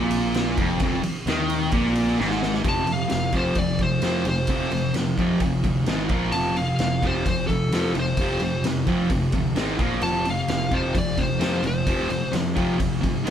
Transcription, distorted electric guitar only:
0.00 0.58 A#2 loud
0.58 0.80 F2 loud
0.83 1.02 F2 loud
1.04 muted distorted electric guitar stroke medium
1.27 1.72 D#3 loud
1.73 2.18 A#2 loud
2.18 2.63 G#2 loud
2.64 2.85 F2 medium
2.64 2.85 C3 medium
2.64 2.87 F3 medium
2.86 3.07 F2 medium
2.86 3.08 C3 medium
3.08 3.30 F2 medium
3.08 3.31 C3 medium
3.33 3.55 F2 medium
3.33 3.55 C3 medium
3.33 3.56 F3 medium
3.56 3.77 F2 medium
3.56 3.78 C3 medium
3.80 4.01 F2 medium
3.80 4.01 C3 medium
4.02 4.24 F2 medium
4.02 4.25 C3 medium
4.02 4.25 F3 medium
4.26 4.47 F2 medium
4.26 4.47 C3 medium
4.49 4.71 F2 medium
4.49 4.71 C3 loud
4.49 4.71 F3 loud
4.72 4.93 F2 medium
4.72 4.93 C3 medium
4.95 5.16 F2 medium
4.95 5.16 C3 medium
5.18 5.40 F2 medium
5.18 5.40 C3 medium
5.18 5.41 F3 loud
5.42 5.62 F2 medium
5.42 5.62 C3 medium
5.64 5.85 F2 medium
5.64 5.85 C3 medium
5.87 6.09 G#2 medium
5.87 6.09 D#3 medium
5.87 6.10 G#3 medium
6.10 6.32 A#2 medium
6.10 6.32 F3 medium
6.10 6.33 A#3 medium
6.34 6.55 F2 medium
6.34 6.56 C3 loud
6.34 6.56 F3 loud
6.57 6.78 F2 medium
6.57 6.78 C3 medium
6.80 7.01 F2 medium
6.80 7.01 C3 medium
7.03 7.24 F2 medium
7.03 7.25 C3 medium
7.03 7.25 F3 loud
7.26 7.47 F2 medium
7.26 7.47 C3 medium
7.49 7.70 F2 medium
7.49 7.70 C3 medium
7.73 7.94 F2 medium
7.73 7.94 C3 medium
7.73 7.95 F3 loud
7.96 8.16 F2 medium
7.96 8.17 C3 medium
8.20 8.41 F2 loud
8.20 8.41 C3 loud
8.20 8.41 F3 medium
8.44 8.63 F2 medium
8.44 8.63 C3 medium
8.66 8.86 F2 medium
8.66 8.86 C3 medium
8.87 9.09 F2 medium
8.87 9.09 C3 medium
8.87 9.10 F3 loud
9.11 9.32 F2 medium
9.11 9.32 C3 medium
9.33 9.55 F2 medium
9.33 9.55 C3 medium
9.55 9.78 G#2 medium
9.55 9.77 D#3 medium
9.55 9.78 G#3 loud
9.78 10.01 A#2 medium
9.78 10.01 F3 medium
9.78 10.02 A#3 medium
10.02 10.24 F2 medium
10.02 10.25 C3 medium
10.02 10.25 F3 medium
10.25 10.47 F2 medium
10.25 10.47 C3 medium
10.49 10.70 F2 medium
10.49 10.71 C3 medium
10.72 10.94 F2 loud
10.72 10.94 C3 medium
10.72 10.94 F3 loud
10.95 11.16 F2 medium
10.95 11.16 C3 medium
11.18 11.38 F2 medium
11.18 11.39 C3 medium
11.40 11.63 F2 medium
11.40 11.63 C3 medium
11.40 11.64 F3 loud
11.64 11.86 F2 medium
11.64 11.86 C3 medium
11.87 12.08 F2 loud
11.87 12.09 C3 loud
11.87 12.10 F3 loud
12.10 12.30 F2 medium
12.10 12.31 C3 medium
12.32 12.54 F2 medium
12.32 12.54 C3 medium
12.55 12.78 F2 medium
12.55 12.78 C3 loud
12.55 12.79 F3 loud
12.79 13.01 F2 medium
12.79 13.01 C3 medium
13.02 13.24 F2 medium
13.02 13.24 C3 medium
13.24 13.30 G#2 medium
13.24 13.30 D#3 loud
13.24 13.30 G#3 medium

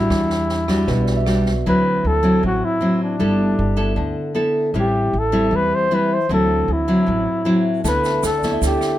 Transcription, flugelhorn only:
0.00 1.28 E4 medium
1.68 2.08 B4 loud
2.07 2.44 A4 medium
2.46 2.66 F#4 medium
2.64 3.02 E4 medium
3.03 4.14 D4 medium
4.79 5.20 G4 medium
5.19 5.57 A4 medium
5.56 5.76 B4 loud
5.75 5.95 C5 loud
5.94 6.15 B4 medium
6.13 6.31 C5 medium
6.34 6.74 A4 medium
6.72 7.67 E4 medium
7.87 8.22 B4 medium
8.25 8.61 A4 medium
8.66 8.99 G4 medium

